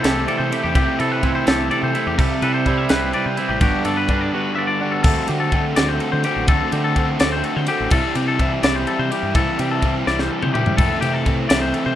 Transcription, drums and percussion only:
0.04 snare, ride
0.28 ride
0.52 ride
0.75 kick, ride
1.00 ride
1.23 kick, ride
1.47 snare, ride
1.71 ride
1.95 ride
2.19 kick, crash
2.42 ride
2.66 kick, ride
2.89 snare, ride
3.13 ride
3.37 ride
3.61 kick, ride
3.85 ride
4.08 kick, ride
5.04 kick, crash
5.28 ride
5.52 kick, ride
5.76 snare, ride
6.00 ride
6.24 ride
6.48 kick, ride
6.72 ride
6.96 kick, ride
7.20 snare, ride
7.44 ride
7.67 ride
7.90 kick, crash
8.15 ride
8.39 kick, ride
8.63 snare, ride
8.87 ride
9.12 ride
9.35 kick, ride
9.59 ride
9.82 kick, ride
10.07 snare
10.19 snare
10.42 mid tom
10.55 mid tom
10.66 floor tom
10.78 kick, crash
11.02 ride
11.26 kick, ride
11.50 snare, ride
11.74 ride

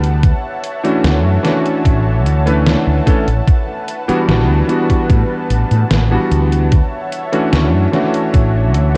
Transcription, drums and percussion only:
0.03 closed hi-hat
0.23 kick, closed hi-hat
0.64 closed hi-hat
0.85 closed hi-hat
1.04 snare, closed hi-hat
1.45 snare, closed hi-hat
1.66 closed hi-hat
1.85 kick, closed hi-hat
2.26 closed hi-hat
2.47 closed hi-hat
2.66 snare, closed hi-hat
3.07 kick, closed hi-hat
3.28 closed hi-hat
3.48 kick, closed hi-hat
3.88 closed hi-hat
4.09 closed hi-hat
4.29 snare, closed hi-hat
4.69 closed hi-hat
4.90 kick, closed hi-hat
5.10 kick, closed hi-hat
5.50 closed hi-hat
5.71 closed hi-hat
5.91 snare, closed hi-hat
6.31 closed hi-hat
6.52 closed hi-hat
6.72 kick, closed hi-hat
7.12 closed hi-hat
7.33 closed hi-hat
7.53 snare, closed hi-hat
7.93 snare, closed hi-hat
8.14 closed hi-hat
8.34 kick, closed hi-hat
8.75 closed hi-hat

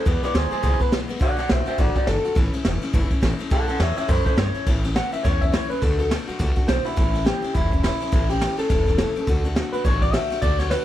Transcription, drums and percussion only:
0.06 kick, ride
0.24 snare, ride
0.35 snare, ride
0.52 ride
0.64 kick, snare, ride
0.81 kick, ride
0.92 snare, ride
1.10 ride
1.21 kick, ride
1.38 snare, ride
1.49 snare, ride
1.67 ride
1.78 kick, snare, ride
1.95 kick, snare, ride
2.07 snare, ride
2.25 ride
2.36 kick, ride
2.53 ride
2.65 snare, ride
2.82 ride
2.94 kick, ride
3.11 kick, ride
3.23 snare, ride
3.40 ride
3.51 kick, ride
3.69 ride
3.80 snare, ride
3.97 ride
4.09 kick, ride
4.26 kick, ride
4.38 snare, ride
4.55 ride
4.66 kick, ride
4.84 snare, ride
4.96 snare, ride
5.13 ride
5.25 kick, snare, ride
5.42 kick, ride
5.54 snare, ride
5.71 ride
5.82 kick, ride
5.99 ride
6.11 snare, ride
6.28 ride
6.40 kick, ride
6.57 kick, ride
6.68 snare, ride
6.86 ride
6.97 kick, ride
7.15 ride
7.26 snare, ride
7.44 ride
7.55 kick, ride
7.72 kick, ride
7.84 snare, ride
8.01 ride
8.12 kick, ride
8.30 ride
8.41 snare, ride
8.59 ride
8.70 kick, snare, ride
8.87 kick, snare, ride
8.98 snare, ride
9.16 ride
9.27 kick, ride
9.44 ride
9.56 snare, ride
9.73 ride
9.85 kick, ride
10.02 kick, ride
10.14 snare, ride
10.31 snare, ride
10.42 kick, ride
10.60 snare, ride
10.71 snare, ride

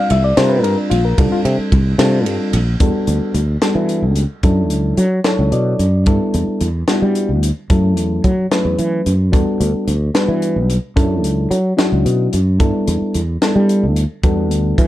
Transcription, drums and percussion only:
0.10 ride
0.37 snare, ride
0.64 ride
0.91 ride
1.18 kick, ride
1.45 ride
1.72 kick, ride
1.99 snare, ride
2.26 ride
2.53 ride
2.80 kick, closed hi-hat
3.07 closed hi-hat
3.34 closed hi-hat
3.62 snare, closed hi-hat
3.89 closed hi-hat
4.16 closed hi-hat
4.43 kick, closed hi-hat
4.70 closed hi-hat
4.97 closed hi-hat
5.24 snare, closed hi-hat
5.52 closed hi-hat
5.79 closed hi-hat
6.06 kick, closed hi-hat
6.34 closed hi-hat
6.61 closed hi-hat
6.88 snare, closed hi-hat
7.15 closed hi-hat
7.43 closed hi-hat
7.70 kick, closed hi-hat
7.97 closed hi-hat
8.24 kick, closed hi-hat
8.52 snare, closed hi-hat
8.79 closed hi-hat
9.06 closed hi-hat
9.33 kick, closed hi-hat
9.61 closed hi-hat
9.88 closed hi-hat
10.15 snare, closed hi-hat
10.42 closed hi-hat
10.70 closed hi-hat
10.97 kick, closed hi-hat
11.24 closed hi-hat
11.51 closed hi-hat
11.79 snare, closed hi-hat
12.06 closed hi-hat
12.33 closed hi-hat
12.60 kick, closed hi-hat
12.88 closed hi-hat
13.14 closed hi-hat
13.42 snare, closed hi-hat
13.69 closed hi-hat
13.96 closed hi-hat
14.23 kick, closed hi-hat
14.51 closed hi-hat
14.78 kick, closed hi-hat

